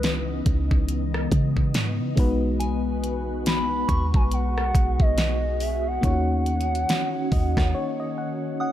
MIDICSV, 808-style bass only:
0, 0, Header, 1, 2, 480
1, 0, Start_track
1, 0, Key_signature, 5, "minor"
1, 0, Tempo, 857143
1, 1458, Time_signature, 4, 2, 24, 8
1, 4884, End_track
2, 0, Start_track
2, 0, Title_t, "808-style bass"
2, 0, Program_c, 0, 38
2, 0, Note_on_c, 0, 37, 119
2, 236, Note_off_c, 0, 37, 0
2, 259, Note_on_c, 0, 37, 106
2, 719, Note_off_c, 0, 37, 0
2, 738, Note_on_c, 0, 49, 106
2, 980, Note_on_c, 0, 44, 99
2, 988, Note_off_c, 0, 49, 0
2, 1118, Note_on_c, 0, 49, 105
2, 1126, Note_off_c, 0, 44, 0
2, 1213, Note_off_c, 0, 49, 0
2, 1218, Note_on_c, 0, 35, 100
2, 2156, Note_off_c, 0, 35, 0
2, 2178, Note_on_c, 0, 39, 105
2, 2311, Note_off_c, 0, 39, 0
2, 2320, Note_on_c, 0, 35, 105
2, 2646, Note_off_c, 0, 35, 0
2, 2659, Note_on_c, 0, 35, 99
2, 2792, Note_off_c, 0, 35, 0
2, 2799, Note_on_c, 0, 35, 101
2, 3356, Note_off_c, 0, 35, 0
2, 3380, Note_on_c, 0, 39, 115
2, 3839, Note_off_c, 0, 39, 0
2, 4099, Note_on_c, 0, 39, 105
2, 4232, Note_off_c, 0, 39, 0
2, 4240, Note_on_c, 0, 39, 93
2, 4335, Note_off_c, 0, 39, 0
2, 4884, End_track
0, 0, End_of_file